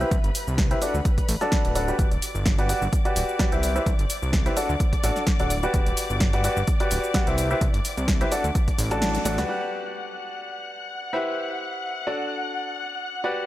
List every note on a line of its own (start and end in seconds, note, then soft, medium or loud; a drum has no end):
0.00 0.11 E4 medium
0.00 0.11 G4 medium
0.00 2.00 B4 medium
0.00 0.11 B4 medium
0.00 0.11 C5 medium
0.00 0.11 E5 loud
0.00 2.00 B5 medium
0.00 shaker soft
0.11 0.19 C2 loud
0.11 kick loud
0.11 closed hi-hat medium
0.11 shaker soft
0.24 0.31 G1 medium
0.24 closed hi-hat soft
0.24 shaker soft
0.35 open hi-hat loud
0.35 shaker medium
0.47 0.75 C2 medium
0.47 shaker soft
0.58 kick loud
0.58 snare loud
0.58 closed hi-hat medium
0.58 shaker soft
0.71 0.80 E4 medium
0.71 0.80 G4 medium
0.71 0.80 B4 medium
0.71 0.80 C5 medium
0.71 0.80 E5 loud
0.71 closed hi-hat soft
0.71 shaker soft
0.82 0.94 D4 medium
0.82 0.94 F#4 medium
0.82 0.94 A4 medium
0.82 0.94 D5 medium
0.82 0.94 F#5 loud
0.82 open hi-hat loud
0.82 shaker medium
0.94 1.01 D2 loud
0.94 shaker soft
1.05 kick loud
1.05 closed hi-hat medium
1.05 shaker soft
1.18 kick medium
1.18 closed hi-hat soft
1.18 shaker soft
1.29 1.36 A1 loud
1.29 open hi-hat loud
1.29 shaker medium
1.41 1.73 D4 loud
1.41 1.73 F#4 medium
1.41 1.73 A4 medium
1.41 1.73 D5 medium
1.41 1.73 A5 loud
1.41 snare soft
1.41 closed hi-hat soft
1.41 shaker soft
1.52 kick loud
1.52 snare loud
1.52 closed hi-hat medium
1.52 shaker soft
1.65 1.92 D1 loud
1.65 closed hi-hat medium
1.65 shaker soft
1.75 1.86 D4 medium
1.75 1.86 F#4 medium
1.75 1.86 A4 medium
1.75 1.86 D5 medium
1.75 1.86 F#5 loud
1.75 open hi-hat loud
1.75 shaker medium
1.88 2.05 F#4 medium
1.88 2.05 G4 medium
1.88 2.05 B4 medium
1.88 2.05 D5 medium
1.88 2.05 F#5 medium
1.88 shaker soft
1.99 2.07 G1 medium
1.99 9.50 D5 medium
1.99 9.50 D6 medium
1.99 kick loud
1.99 closed hi-hat medium
1.99 shaker soft
2.11 2.18 D1 medium
2.11 closed hi-hat soft
2.11 shaker soft
2.22 open hi-hat loud
2.22 shaker medium
2.35 2.74 G1 medium
2.35 shaker soft
2.46 kick loud
2.46 snare loud
2.46 closed hi-hat medium
2.46 shaker soft
2.58 2.68 F#4 medium
2.58 2.68 G4 medium
2.58 2.68 B4 medium
2.58 2.68 D5 medium
2.58 2.68 F#5 medium
2.58 closed hi-hat soft
2.58 shaker soft
2.69 2.81 F#4 medium
2.69 2.81 G4 medium
2.69 2.81 B4 medium
2.69 2.81 D5 medium
2.69 2.81 F#5 loud
2.69 open hi-hat loud
2.69 shaker medium
2.82 2.88 G1 medium
2.82 shaker soft
2.93 kick loud
2.93 closed hi-hat medium
2.93 shaker soft
3.05 3.37 F#4 medium
3.05 3.37 G4 medium
3.05 3.37 B4 medium
3.05 3.37 D5 medium
3.05 3.37 F#5 loud
3.05 closed hi-hat soft
3.05 shaker soft
3.16 3.24 D1 loud
3.16 open hi-hat loud
3.16 shaker medium
3.29 shaker soft
3.39 3.50 F#4 loud
3.39 3.50 G4 medium
3.39 3.50 B4 medium
3.39 3.50 D5 medium
3.39 3.50 F#5 loud
3.39 kick loud
3.39 snare loud
3.39 closed hi-hat medium
3.39 shaker soft
3.52 3.80 C2 medium
3.52 3.69 E4 medium
3.52 3.69 G4 medium
3.52 3.69 B4 medium
3.52 3.69 C5 medium
3.52 3.69 E5 medium
3.52 closed hi-hat soft
3.52 shaker soft
3.63 open hi-hat loud
3.63 shaker medium
3.75 3.86 E4 medium
3.75 3.86 G4 medium
3.75 3.86 B4 medium
3.75 3.86 C5 medium
3.75 3.86 E5 loud
3.75 shaker soft
3.86 3.94 C2 loud
3.86 kick loud
3.86 closed hi-hat medium
3.86 shaker soft
3.99 4.06 G1 medium
3.99 closed hi-hat soft
3.99 shaker soft
4.10 open hi-hat loud
4.10 shaker medium
4.22 4.50 C2 medium
4.22 shaker soft
4.33 kick loud
4.33 snare loud
4.33 closed hi-hat medium
4.33 shaker soft
4.46 4.55 E4 medium
4.46 4.55 G4 medium
4.46 4.55 B4 medium
4.46 4.55 C5 medium
4.46 4.55 E5 loud
4.46 closed hi-hat soft
4.46 shaker soft
4.57 4.69 D4 medium
4.57 4.69 F#4 medium
4.57 4.69 A4 medium
4.57 4.69 D5 medium
4.57 4.69 F#5 loud
4.57 open hi-hat loud
4.57 shaker medium
4.69 4.76 D2 loud
4.69 shaker soft
4.80 kick loud
4.80 closed hi-hat medium
4.80 shaker soft
4.93 kick medium
4.93 closed hi-hat medium
4.93 shaker soft
5.04 5.11 A1 loud
5.04 5.22 D4 medium
5.04 5.22 F#4 medium
5.04 5.22 A4 medium
5.04 5.22 D5 medium
5.04 5.22 F#5 loud
5.04 open hi-hat loud
5.04 shaker medium
5.16 snare soft
5.16 shaker soft
5.27 kick loud
5.27 snare loud
5.27 closed hi-hat medium
5.27 shaker soft
5.40 5.67 D1 medium
5.40 5.50 D4 medium
5.40 5.50 F#4 medium
5.40 5.50 A4 medium
5.40 5.50 D5 medium
5.40 5.50 F#5 medium
5.40 closed hi-hat medium
5.40 shaker soft
5.50 open hi-hat loud
5.50 shaker medium
5.63 6.30 F#4 medium
5.63 6.30 G4 medium
5.63 6.30 B4 medium
5.63 6.30 D5 medium
5.63 6.30 F#5 loud
5.63 shaker soft
5.74 5.81 G1 loud
5.74 kick loud
5.74 closed hi-hat medium
5.74 shaker soft
5.86 5.93 D1 medium
5.86 closed hi-hat medium
5.86 shaker soft
5.97 open hi-hat loud
5.97 shaker medium
6.10 6.49 G1 medium
6.10 shaker soft
6.20 kick loud
6.20 snare loud
6.20 closed hi-hat medium
6.20 shaker soft
6.33 6.43 F#4 medium
6.33 6.43 G4 medium
6.33 6.43 B4 medium
6.33 6.43 D5 medium
6.33 6.43 F#5 medium
6.33 closed hi-hat medium
6.33 shaker soft
6.44 6.56 F#4 medium
6.44 6.56 G4 medium
6.44 6.56 B4 medium
6.44 6.56 D5 medium
6.44 6.56 F#5 medium
6.44 open hi-hat loud
6.44 shaker medium
6.57 6.63 G1 loud
6.57 shaker soft
6.67 kick loud
6.67 closed hi-hat medium
6.67 shaker soft
6.80 7.12 F#4 medium
6.80 7.12 G4 medium
6.80 7.12 B4 medium
6.80 7.12 D5 medium
6.80 7.12 F#5 loud
6.80 closed hi-hat medium
6.80 shaker soft
6.91 6.99 D1 loud
6.91 open hi-hat loud
6.91 shaker medium
7.04 shaker soft
7.14 7.25 F#4 loud
7.14 7.25 G4 medium
7.14 7.25 B4 medium
7.14 7.25 D5 medium
7.14 7.25 F#5 loud
7.14 kick loud
7.14 snare loud
7.14 closed hi-hat medium
7.14 shaker soft
7.27 7.54 C2 loud
7.27 7.44 E4 medium
7.27 7.44 G4 medium
7.27 7.44 B4 medium
7.27 7.44 C5 medium
7.27 7.44 E5 loud
7.27 closed hi-hat medium
7.27 shaker soft
7.38 open hi-hat loud
7.38 shaker medium
7.51 7.61 E4 medium
7.51 7.61 G4 medium
7.51 7.61 B4 medium
7.51 7.61 C5 medium
7.51 7.61 E5 medium
7.51 shaker soft
7.61 7.69 C2 loud
7.61 kick loud
7.61 closed hi-hat medium
7.61 shaker soft
7.74 7.80 G1 medium
7.74 closed hi-hat medium
7.74 shaker soft
7.85 open hi-hat loud
7.85 shaker medium
7.97 8.25 C2 medium
7.97 closed hi-hat soft
7.97 shaker soft
8.08 kick loud
8.08 snare loud
8.08 closed hi-hat medium
8.08 shaker soft
8.21 8.30 E4 medium
8.21 8.30 G4 medium
8.21 8.30 B4 medium
8.21 8.30 C5 medium
8.21 8.30 E5 loud
8.21 closed hi-hat medium
8.21 shaker soft
8.32 8.44 D4 loud
8.32 8.44 F#4 medium
8.32 8.44 A4 medium
8.32 8.44 D5 medium
8.32 8.44 F#5 loud
8.32 open hi-hat loud
8.32 shaker medium
8.44 8.51 D2 loud
8.44 closed hi-hat soft
8.44 shaker soft
8.55 kick loud
8.55 closed hi-hat medium
8.55 shaker soft
8.68 kick medium
8.68 closed hi-hat medium
8.68 shaker soft
8.78 9.19 A1 loud
8.78 open hi-hat loud
8.78 shaker medium
8.91 9.23 D4 loud
8.91 9.23 F#4 medium
8.91 9.23 A4 medium
8.91 9.23 D5 medium
8.91 9.23 A5 loud
8.91 snare soft
8.91 closed hi-hat soft
8.91 shaker soft
9.02 snare loud
9.02 closed hi-hat medium
9.02 shaker soft
9.15 closed hi-hat medium
9.15 shaker soft
9.25 9.39 A1 medium
9.25 9.36 D4 medium
9.25 9.36 F#4 medium
9.25 9.36 A4 medium
9.25 9.36 D5 medium
9.25 9.36 F#5 loud
9.25 snare medium
9.25 open hi-hat loud
9.25 shaker medium
9.38 9.45 D2 medium
9.38 9.47 F#4 medium
9.38 9.47 G4 medium
9.38 9.47 B4 medium
9.38 9.47 D5 medium
9.38 9.47 F#5 medium
9.38 snare medium
9.38 closed hi-hat soft
9.38 shaker soft
9.49 11.10 F#4 medium
9.49 11.10 G4 medium
9.49 11.10 B4 medium
9.49 11.10 D5 medium
9.49 13.46 F#5 medium
9.49 11.10 F#5 medium
9.49 13.46 F#6 medium
11.13 12.04 E4 medium
11.13 12.04 G4 medium
11.13 12.04 B4 medium
11.13 12.04 C5 medium
11.13 12.04 E5 medium
12.07 13.21 D4 medium
12.07 13.21 F#4 medium
12.07 13.21 A4 medium
12.07 13.21 D5 medium
12.07 13.21 F#5 medium
13.24 13.46 F#4 medium
13.24 13.46 G4 medium
13.24 13.46 B4 medium
13.24 13.46 D5 medium
13.24 13.46 F#5 medium